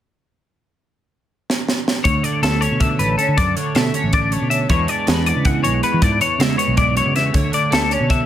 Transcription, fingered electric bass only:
2.05 D2
2.42 D2
2.71 B2
2.99 A1
3.28 D3
3.37 F#2
3.75 B2
4.03 A1
4.41 B2
4.70 E2
5.08 E2
5.36 C#3
5.65 B1
5.94 E3
6.02 G#2
6.39 C#3
6.67 B1
7.06 C#3
7.34 D2
7.72 D2
8.00 B2

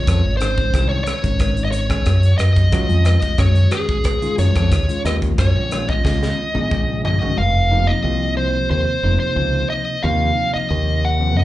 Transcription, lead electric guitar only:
Already playing: C#5
0.37 C5
0.89 C#5
1.04 C#5
1.65 D#5
1.71 C#5
2.38 D#5
3.06 D#5
3.39 C#5
3.71 G#4
4.39 C#5
5.06 D#5
5.39 C#5
5.90 D#5
7.05 D#5
7.38 F5
7.87 D#5
8.37 C5
8.71 C5
9.20 C5
9.70 D#5
10.03 F5
10.54 D#5
11.05 F#5
11.37 D#5

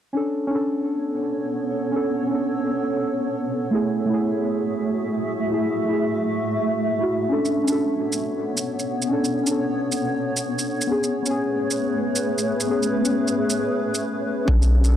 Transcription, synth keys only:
0.13 C#4 D4 A4
0.47 C#4 D4
0.55 A4
1.92 C#4 D4
1.96 A4
2.27 C#4
2.31 D4 A4
3.71 A3 E4 G#4
4.06 A3 E4
4.14 G#4
5.50 A3 E4 G#4
5.85 A3 E4
5.93 G#4
6.98 A3 E4
7.02 F#4
7.29 C#4 D4 A4
7.64 C#4 D4
7.72 A4
9.09 C#4 D4
9.13 A4
9.43 C#4 D4
9.51 A4
10.87 B3 C#4
10.91 G#4
11.22 B3
11.27 C#4 G#4
12.67 B3 C#4 G#4
13.01 B3 C#4
13.09 G#4
14.46 C#4 D4 A4
14.80 C#4
14.84 D4
14.88 A4

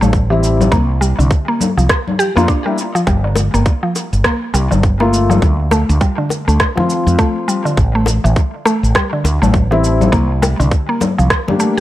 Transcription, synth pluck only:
0.01 A3
0.30 E3
0.72 A#3
1.01 G3
1.19 D3
1.48 A#3
1.78 F3
2.19 G4
2.37 A#3
2.48 D4
2.66 G3
2.95 F3
3.07 G3
3.24 D3
3.54 A#3
3.83 F3
4.24 A#3
4.54 G3
4.71 D3
5.00 A#3
5.30 F3
5.71 A3
6.01 G3
6.18 D3
6.48 A3
6.77 F3
7.19 A3
7.48 G3
7.65 D3
7.95 A3
8.24 E3
8.65 A3
8.95 G3
9.13 D3
9.42 A3
9.71 E3
10.12 A#3
10.42 G3
10.60 D3
10.89 A#3
11.18 F3
11.60 A3

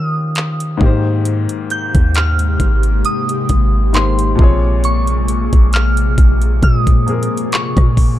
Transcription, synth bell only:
Already playing: D#6
1.71 G6
2.16 F6
3.05 D#6
3.95 C6
4.85 C#6
5.74 F6
6.64 D#6
7.53 C#6

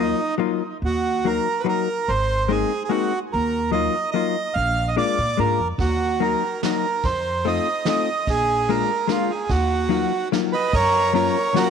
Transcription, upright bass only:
Already playing: D#2
0.82 D#2
2.08 G#1
3.33 D#2
4.56 A#1
5.18 A#2
5.39 G#2
5.60 F2
5.78 D#2
7.04 F2
8.28 A#1
9.50 D#2
10.73 F#2

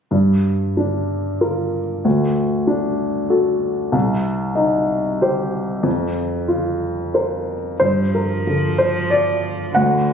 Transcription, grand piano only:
0.11 G2
0.77 D4
1.41 F4 A#4
2.05 D2
2.67 D4
3.30 F#4 A4
3.92 C2
4.55 D#4
5.22 G4 C5
5.83 F2
6.48 F4
7.14 A#4 C5
7.80 G2 C5
8.15 A#4
8.47 D3
8.78 C5
9.10 D5
9.75 D2 F#5

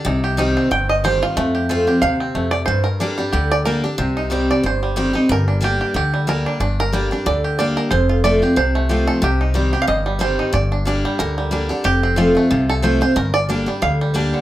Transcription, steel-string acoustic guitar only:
0.05 C3
0.37 D#3 G3 C4 G4
0.71 G2
1.04 D#3 G3 C4 G4
1.37 F2
1.69 F3 A3 C4 F4
1.87 C4 F4
2.02 C3
2.35 F2
2.68 G2
3.00 G3 A#3 D4 G4
3.18 D4 G4
3.33 D3
3.65 G3 A#3 D4 G4
3.84 D4 G4
3.98 C3
4.30 D#3 G3 C4 G4
4.63 G2
4.96 D#3 G3 C4 G4
5.13 C4 G4
5.29 G2
5.61 G3 A#3 D4 G4
5.94 D3
6.27 G3 A#3 D4 G4
6.60 G2
6.93 G3 A#3 D4 G4
7.11 D4 G4
7.26 D3
7.59 G3 A#3 D4 G4
7.91 F2
8.24 F3 A3 C4 F4
8.42 C4 F4
8.56 C3
8.89 F3 A3 C4 F4
9.22 C3
9.54 D#3 G3 C4 G4
9.73 C4 G4
9.88 G2
10.19 D#3 G3 C4 G4
10.53 G2
10.85 G3 A#3 D4 G4
11.20 D3
11.51 G3 A#3 D4 G4
11.69 D4 G4
11.84 F2
12.16 F3 A3 C4 F4
12.35 C4 F4
12.51 C3
12.82 F3 A3 C4 F4
13.01 C4 F4
13.16 G2
13.49 G3 A#3 D4 G4
13.66 D4 G4
13.82 D3
14.14 G3 A#3 D4 G4

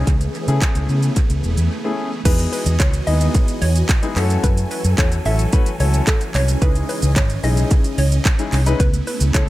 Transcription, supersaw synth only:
Already playing: C#3 E3 G#4
0.07 A3 B3
2.25 E3 B3 F#4 D#5 G#5
4.16 E3 F#3 C#4 A4
6.62 C#3 D#5
8.80 C#3 A3 B3 E4

